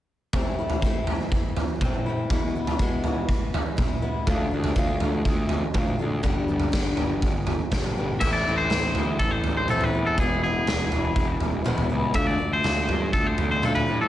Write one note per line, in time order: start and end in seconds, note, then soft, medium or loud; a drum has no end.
0.33 0.82 A2 medium
0.33 0.84 E3 medium
0.33 0.60 A3 medium
0.33 0.59 C4 medium
0.33 0.58 E4 medium
0.33 kick medium
0.33 floor tom medium
0.58 0.84 A3 soft
0.58 0.84 C4 soft
0.58 0.86 E4 soft
0.70 floor tom medium
0.82 1.33 A2 medium
0.82 1.81 E3 medium
0.82 1.11 A3 medium
0.82 1.10 C4 medium
0.82 kick medium
0.86 1.09 E4 medium
1.07 1.83 C4 soft
1.07 1.83 E4 medium
1.07 floor tom medium
1.12 1.81 A3 soft
1.32 kick medium
1.57 floor tom medium
1.81 2.30 E3 medium
1.81 2.08 A3 medium
1.81 2.07 C4 medium
1.81 2.05 E4 medium
1.81 kick medium
1.81 floor tom medium
1.81 mid tom medium
2.06 2.31 A3 soft
2.06 2.31 C4 medium
2.06 2.30 E4 medium
2.30 2.78 E2 medium
2.30 2.79 B2 medium
2.30 2.57 E3 medium
2.30 2.56 G#3 medium
2.30 2.55 B3 medium
2.30 2.54 E4 medium
2.30 kick medium
2.30 floor tom medium
2.56 2.80 E3 soft
2.56 2.80 G#3 soft
2.56 2.81 B3 medium
2.56 2.81 E4 medium
2.67 floor tom medium
2.79 3.29 E2 medium
2.79 3.30 B2 medium
2.79 3.06 E3 medium
2.79 3.05 G#3 medium
2.79 3.04 B3 medium
2.79 3.03 E4 medium
2.79 kick medium
3.04 3.75 E3 soft
3.04 3.77 G#3 medium
3.04 3.77 B3 medium
3.04 3.79 E4 medium
3.04 floor tom medium
3.29 kick medium
3.54 floor tom medium
3.77 4.04 E3 medium
3.77 4.03 G#3 medium
3.77 4.02 B3 medium
3.77 4.01 E4 medium
3.77 kick medium
3.77 floor tom medium
3.77 mid tom medium
4.02 4.26 E3 soft
4.02 4.27 G#3 medium
4.02 4.26 B3 medium
4.02 4.26 E4 medium
4.27 4.46 D2 medium
4.27 4.74 D3 medium
4.27 4.53 A3 medium
4.27 4.52 D4 medium
4.27 4.50 F4 medium
4.27 kick medium
4.27 floor tom medium
4.51 4.71 D2 medium
4.51 4.75 A3 soft
4.51 4.77 D4 medium
4.51 4.77 F4 medium
4.64 floor tom medium
4.75 4.95 D2 medium
4.75 5.26 D3 medium
4.75 5.03 A3 medium
4.75 5.03 D4 medium
4.75 5.00 F4 medium
4.75 kick loud
5.00 5.20 D2 medium
5.00 5.76 D4 medium
5.00 5.76 F4 medium
5.00 floor tom medium
5.04 5.75 A3 medium
5.25 5.62 D2 medium
5.25 kick medium
5.49 floor tom medium
5.74 5.94 D2 medium
5.74 6.22 D3 medium
5.74 6.01 A3 medium
5.74 6.00 D4 medium
5.74 5.98 F4 medium
5.74 kick medium
5.74 floor tom medium
5.74 mid tom medium
5.99 6.19 D2 medium
5.99 6.24 A3 soft
5.99 6.24 D4 medium
5.99 6.23 F4 medium
6.23 6.43 G1 medium
6.23 6.71 G2 medium
6.23 6.72 D3 medium
6.23 6.49 G3 medium
6.23 6.48 B3 medium
6.23 6.48 D4 medium
6.23 6.47 G4 medium
6.23 kick medium
6.23 floor tom medium
6.48 6.68 G1 medium
6.48 6.73 G3 soft
6.48 6.73 B3 soft
6.48 6.73 D4 medium
6.48 6.74 G4 medium
6.60 floor tom medium
6.72 6.92 G1 medium
6.72 7.22 G2 medium
6.72 7.23 D3 medium
6.72 6.98 G3 medium
6.72 6.98 B3 medium
6.72 6.96 D4 medium
6.72 6.96 G4 medium
6.72 kick medium
6.72 snare medium
6.97 7.18 G1 medium
6.97 7.71 G3 soft
6.97 7.71 B3 soft
6.97 7.73 D4 soft
6.97 7.73 G4 medium
6.97 floor tom medium
7.22 7.59 G1 medium
7.22 kick medium
7.47 floor tom medium
7.72 7.91 G1 medium
7.72 7.99 G3 medium
7.72 7.98 B3 medium
7.72 7.97 D4 medium
7.72 7.96 G4 medium
7.72 kick medium
7.72 snare medium
7.72 floor tom medium
7.72 mid tom medium
7.84 mid tom medium
7.98 8.16 G1 medium
7.98 8.22 G3 soft
7.98 8.21 B3 soft
7.98 8.21 D4 medium
7.98 8.20 G4 medium
8.20 8.42 A1 medium
8.20 8.71 A2 medium
8.20 8.73 E3 medium
8.20 8.32 E5 medium
8.20 kick loud
8.20 floor tom medium
8.20 crash medium
8.24 8.49 A3 medium
8.24 8.48 C4 medium
8.24 8.47 E4 medium
8.33 8.57 D5 medium
8.47 8.67 A1 medium
8.47 8.73 A3 soft
8.47 8.73 C4 medium
8.47 8.75 E4 medium
8.58 9.19 C5 medium
8.70 8.91 A1 medium
8.70 9.69 E3 medium
8.70 8.98 A3 medium
8.70 snare medium
8.70 floor tom medium
8.75 8.97 C4 medium
8.75 8.97 E4 medium
8.95 9.16 D2 medium
8.95 9.70 C4 medium
8.95 9.70 E4 medium
8.95 floor tom medium
8.99 9.69 A3 soft
9.19 9.40 A1 medium
9.19 9.31 A4 medium
9.19 kick medium
9.31 9.56 C5 medium
9.44 9.66 A1 medium
9.44 floor tom medium
9.57 9.70 C5 medium
9.68 9.90 A1 medium
9.68 10.17 A2 medium
9.68 10.17 E3 medium
9.68 9.95 A3 medium
9.68 9.94 C4 medium
9.68 9.92 E4 loud
9.68 9.84 A4 medium
9.68 mid tom medium
9.81 10.06 B4 medium
9.81 floor tom medium
9.93 10.15 E2 medium
9.93 10.18 A3 soft
9.93 10.18 C4 medium
9.93 10.17 E4 medium
10.06 10.18 A4 medium
10.18 10.58 E1 medium
10.18 10.68 E2 medium
10.18 10.68 B2 medium
10.18 10.45 E3 medium
10.18 10.45 G#3 medium
10.18 10.44 B3 medium
10.18 10.42 E4 medium
10.18 10.42 G#4 medium
10.18 kick medium
10.18 floor tom medium
10.43 10.67 E3 soft
10.43 10.67 G#3 medium
10.43 10.69 B3 medium
10.43 10.69 E4 medium
10.43 11.38 G#4 medium
10.67 10.88 E1 medium
10.67 10.94 E3 medium
10.67 10.93 G#3 medium
10.67 10.92 B3 medium
10.67 10.91 E4 medium
10.67 snare medium
10.67 floor tom medium
10.92 11.13 E1 medium
10.92 11.64 E3 medium
10.92 11.65 G#3 medium
10.92 11.66 B3 medium
10.92 11.67 E4 medium
10.92 floor tom medium
11.16 11.37 E1 medium
11.16 kick loud
11.40 11.63 E1 medium
11.40 floor tom medium
11.64 12.13 E2 medium
11.64 12.14 B2 medium
11.64 11.92 E3 medium
11.64 11.91 G#3 medium
11.64 11.90 B3 medium
11.64 11.88 E4 medium
11.64 mid tom medium
11.69 11.88 E1 medium
11.78 floor tom medium
11.90 12.11 C#2 medium
11.90 12.14 E3 soft
11.90 12.14 G#3 medium
11.90 12.14 B3 medium
11.90 12.13 E4 medium
12.14 12.35 D2 medium
12.14 12.62 D3 medium
12.14 12.40 A3 medium
12.14 12.40 D4 medium
12.14 12.37 F4 medium
12.14 12.27 E5 medium
12.14 kick medium
12.14 floor tom medium
12.27 12.53 D5 medium
12.38 12.60 D2 medium
12.38 12.65 D4 medium
12.38 12.65 F4 medium
12.53 13.13 C5 medium
12.63 12.85 D2 medium
12.63 13.13 D3 medium
12.63 12.90 A3 medium
12.63 12.89 D4 medium
12.63 12.87 F4 medium
12.63 snare medium
12.63 floor tom medium
12.88 13.10 G2 medium
12.88 13.63 A3 soft
12.88 13.63 D4 medium
12.88 13.64 F4 medium
12.88 floor tom medium
13.13 13.34 D2 medium
13.13 13.27 A4 medium
13.13 kick medium
13.27 13.50 C5 medium
13.38 13.60 D2 medium
13.38 floor tom medium
13.51 13.65 C5 medium
13.62 13.84 D2 medium
13.62 14.08 D3 medium
13.62 13.89 A3 medium
13.62 13.88 D4 medium
13.62 13.86 F4 medium
13.62 13.75 A4 medium
13.62 mid tom medium
13.75 14.01 B4 medium
13.75 floor tom medium
13.87 14.08 A2 medium
13.87 14.08 A3 soft
13.87 14.08 D4 medium
13.87 14.08 F4 medium
14.01 14.08 A4 medium